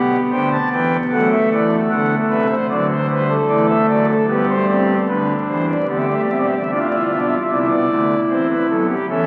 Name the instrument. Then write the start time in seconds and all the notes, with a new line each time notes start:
pipe organ
Already playing: B1 B2 B3 G4 F#5
0.32 D2 D3 C5 G5
0.52 A5
0.72 E2 E3 B4 G5
1.12 F#2 F#3 A3 A4 F#5
1.32 E5
1.51 E2 E3 D5
1.90 D2 D3 A4 F#5
2.30 C2 C3 B4 E5
2.50 C5
2.69 D2 D3 F#3 D5
2.90 C5
3.10 G3 B4 C5
3.29 A4
3.49 E2 E3 A3 D5
3.69 E5
3.89 F#2 F#3 D5
4.08 A4
4.29 G2 G3 B3 G4 B4
4.49 C5
4.69 C4 D5
5.08 D2 D3 D4 B4
5.48 E2 E3 C5
5.69 D5
5.89 D2 D3 B3 G4 D5
5.97 E5
6.05 D5
6.09 A3
6.13 E5
6.22 D5
6.29 B1 B2 C4 E5
6.38 D5
6.46 E5
6.54 D5
6.63 E5
6.71 A1 A2 D4 F4 D5
6.79 E5
6.87 E4 D5
6.95 E5
7.03 D5
7.10 B1 B2 D4 E5
7.19 D5
7.27 E5
7.35 D5
7.43 E5
7.49 C2 C3 C4 E4 D5
7.58 E5
7.67 B3 D5
7.90 D2 D3 A3
8.30 E2 E3 C4 C5
8.50 B4
8.70 F#2 F#3 B3 A4
8.89 G4
9.09 E2 E3 C#4 A4 E5